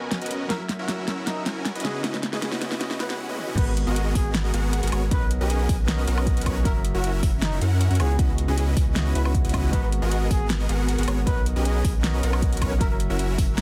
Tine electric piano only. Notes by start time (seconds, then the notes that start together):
Already playing: B3 A#4 C#5 D#5
0.48 F#3 F#4 A#4 E5
1.83 C#3 B3 E4 F#4 F#5
2.02 C#3 B3 E4 F#4 D#5
2.79 C#3 B3 E4 F#4 D#5
3.55 G#3 F#4 A#4
3.59 B3
4.91 G#3 F#4 A#4 B4
5.09 B3 A#4 C#5 D#5
5.87 B3 A#4 C#5 D#5
6.16 B3 A#4 C#5 D#5
6.63 F#3 F#4 A#4 E5
7.99 C#3 B3 E4 F#4 F#5
8.17 C#3 B3 E4 F#4 D#5
8.95 C#3 B3 E4 F#4 D#5
9.23 C#3 B3 E4 F#4 F#5
9.71 G#3 F#4 A#4
9.75 B3
11.07 G#3 F#4 A#4 B4
11.25 B3 A#4 C#5 D#5
12.03 B3 A#4 C#5 D#5
12.31 B3 A#4 C#5 D#5
12.79 F#3 F#4 A#4
12.83 E5